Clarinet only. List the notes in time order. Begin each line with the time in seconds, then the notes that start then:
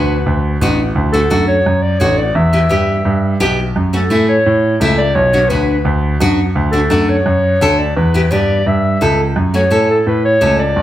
Already playing: B4
1.12 A4
1.48 C#5
1.82 D5
2.00 C#5
2.18 D5
2.36 E5
3.96 A4
4.28 C#5
4.98 D5
5.15 C#5
5.49 B4
6.72 A4
7.09 C#5
7.79 D5
7.97 B4
8.32 D5
8.67 E5
9.55 C#5
9.90 A4
10.08 B4
10.25 C#5
10.59 D5